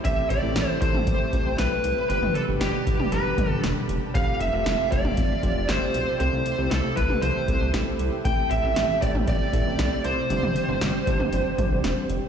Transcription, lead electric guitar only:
X:1
M:4/4
L:1/8
Q:1/4=117
K:Am
V:1 name="Lead electric guitar"
e d2 c3 B2 | B A G2 B2 z2 | f e2 d3 c2 | c2 A B c2 z2 |
g e2 d d3 c- | c6- c z |]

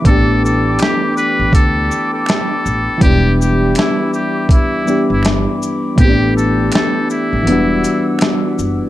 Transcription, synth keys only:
X:1
M:4/4
L:1/8
Q:"Swing 16ths" 1/4=81
K:Em
V:1 name="Synth keys"
[E,A,B,DG]8 | [E,G,B,DG]4- [E,G,B,DG] [E,G,B,DG]3 | [E,A,B,CDG]4 [E,F,G,B,DF]4 |]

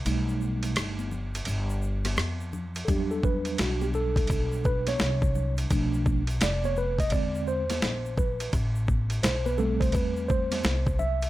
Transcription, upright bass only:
X:1
M:4/4
L:1/8
Q:"Swing 16ths" 1/4=85
K:Bm
V:1 name="Upright bass" clef=bass
B,,,2 G,,,2 G,,,2 =F,,2 | E,,2 B,,,2 B,,,2 =C,,2 | B,,,2 =F,,,2 E,,2 ^A,,,2 | A,,,2 B,,,2 E,,2 =C,,2 |]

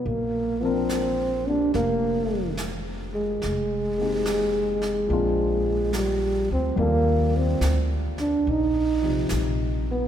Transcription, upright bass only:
X:1
M:4/4
L:1/8
Q:"Swing" 1/4=72
K:Bb
V:1 name="Upright bass" clef=bass
B,,,4 F,,,4 | F,,,4 B,,,3 D,, | E,,2 D,,2 B,,,2 B,,,2 |]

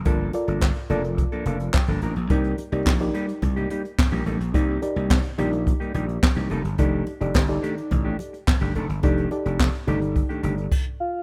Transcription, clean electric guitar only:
X:1
M:4/4
L:1/16
Q:1/4=107
K:Cdor
V:1 name="Clean electric guitar"
[F,B,DA]2 z [F,B,DA] z2 [F,B,DA] z2 [F,B,DA] [F,B,DA] z2 [F,B,DA] [F,B,DB] z | [G,B,EG]2 z [G,B,EG] z2 [G,B,EG] z2 [G,B,EG] [G,B,EG] z2 [G,B,EG] [G,B,EA] z | [G,B,EG]2 z [G,B,EG] z2 [G,B,EG] z2 [G,B,EG] [G,B,EG] z2 [G,B,EG] [G,B,EA] z | [E,A,DG]2 z [E,A,DG] z2 [E,A,DG] z2 [E,A,DG] z3 [E,A,DG] [E,A,DA] z |
[E,A,DG]2 z [E,A,DG] z2 [E,A,DG] z2 [E,A,DG] [E,A,DG] z4 z |]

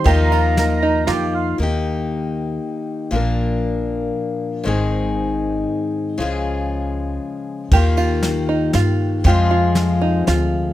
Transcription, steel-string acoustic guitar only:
X:1
M:3/4
L:1/8
Q:1/4=118
K:Eb
V:1 name="Steel-string acoustic guitar"
[E,F,B,EF]6 | [E,B,EG]6 | [B,,F,B,DB]6 | [A,,E,A,CEA]6 |
[_D,F,A,FA]6 | [E,B,FG]6 | [F,,C,F,A,FA]6 |]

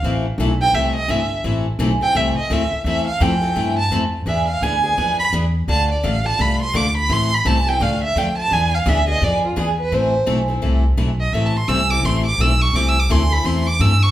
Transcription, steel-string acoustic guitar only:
X:1
M:4/4
L:1/16
Q:"Swing" 1/4=170
K:Am
V:1 name="Steel-string acoustic guitar"
[E,A,CEA]2 z2 [E,A,CEA] z [CEA]2 [E,A,CEA]2 z2 [E,A,CEA] z3 | [E,A,CEA]2 z2 [E,A,CEA] z [CEA]2 [E,A,CEA]2 z2 [E,A,CEA] z3 | [E,A,CEA]2 z2 [E,A,CEA] z [CEA]2 [E,A,CEA]2 z2 [E,A,CEA] z3 | [E,B,D^G]2 z2 [E,B,DG] z [B,DG]2 [E,B,DG]2 z2 [E,B,DG] z3 |
[D,A,DFA]2 z2 [D,A,DFA] z [DFA]2 [D,A,DFA]2 z2 [D,A,DFA] z3 | [E,A,CEA]2 z2 [E,A,CEA] z [CEA]2 [D,A,DFA]2 z2 [D,A,DFA] z3 | [E,B,D^G]2 z2 [E,B,DG] z [B,DG]2 [E,B,DG]2 z2 [E,B,DG] z3 | [E,A,CEA]2 z2 [E,A,CEA] z [CEA]2 [E,A,CEA]2 z2 [E,A,CEA] z3 |
[E,A,CEA]2 z2 [E,A,CEA] z [CEA]2 [E,A,CEA]2 z2 [E,A,CEA] z3 | [E,A,CEA]2 z2 [E,A,CEA] z [CEA]2 [E,A,CEA]2 z2 [E,A,CEA] z3 |]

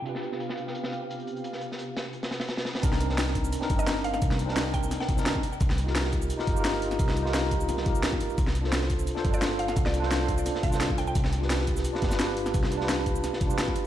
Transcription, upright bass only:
X:1
M:4/4
L:1/8
Q:"Swing 16ths" 1/4=173
K:Cdor
V:1 name="Upright bass" clef=bass
z8 | z8 | C,,4 z G,,,3 | C,,4 z C,,2 z |
C,,4 z G,,,3 | C,,4 C,,3 G,,, | C,,4 z G,,,3 | C,,4 z C,,3 |
C,,4 z G,,,3 | C,,4 z C,, z2 |]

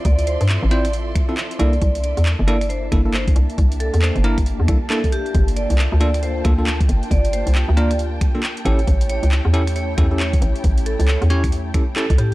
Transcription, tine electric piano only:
X:1
M:4/4
L:1/16
Q:"Swing 16ths" 1/4=136
K:Aphr
V:1 name="Tine electric piano"
z6 [CEFc] z4 [CEFA] z2 [B,DEA] z | z6 [B,DEA] z3 [B,DEA] [B,DEA] z4 | z6 [B,DEB] z3 [B,DEA] z [B,DEA] z3 | z6 [B,DFA] z3 [B,DFA] [B,DFA] z4 |
z6 [B,DFB] z4 [B,DFA] z2 [^CEGA] z | z6 [^CEGA] z3 [CEGA] [CEGA] z4 | z6 [^CEG^c] z3 [CEGA] z [CEGA] z3 |]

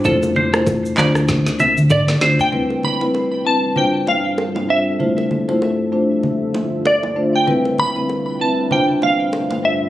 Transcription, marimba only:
X:1
M:4/4
L:1/16
Q:"Swing 16ths" 1/4=97
K:C
V:1 name="Marimba"
[A,EFc]2 z [A,EFc]3 [A,DFc]2 z6 [A,DFc]2 | [G,CEB]2 z [G,CEB]3 [G,CEB]2 [G,DFc]6 [G,DFc]2 | [A,EFc]2 z [A,EFc]3 [A,DFc]2 z6 [A,DFc]2 | [G,CEB]2 z [G,CEB]3 [G,CEB]2 [G,DFc]6 [G,DFc]2 |]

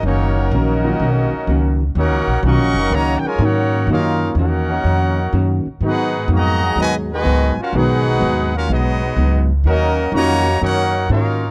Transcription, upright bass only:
X:1
M:4/4
L:1/8
Q:"Swing" 1/4=125
K:Ebm
V:1 name="Upright bass" clef=bass
G,,,2 B,,,2 C,, z D,,2 | (3E,, D,, B,,, (3C,, B,,, G,,, D,, z A,,2 | G,,2 _F,,2 =F,,2 G,, z | A,,2 F,,2 E,,2 D,, z |
C,,2 E,,2 C,,2 D,,2 | E,,2 F,,2 G,,2 A,,2 |]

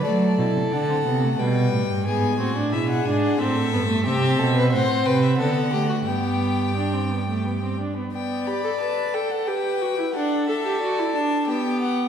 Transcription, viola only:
X:1
M:3/4
L:1/16
Q:1/4=89
K:G
V:1 name="Viola"
A,2 E2 D C B, A, G,4 | B,2 C D E2 D2 C2 B, A, | C4 C4 B,2 A,2 | B,4 D C B, A, B, C D B, |
B,2 G A B2 A2 G2 F E | D2 A G F E D2 B,4 |]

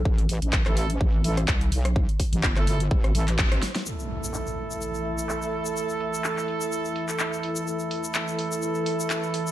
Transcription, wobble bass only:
X:1
M:4/4
L:1/16
Q:"Swing 16ths" 1/4=126
K:C
V:1 name="Wobble bass" clef=bass
A,,,2 A,,, A,,,2 A,,,3 A,,,4 C,,2 B,,,2- | B,,, z2 A,,, G,,,4 A,,,2 A,,,4 z2 | z16 | z16 |
z16 |]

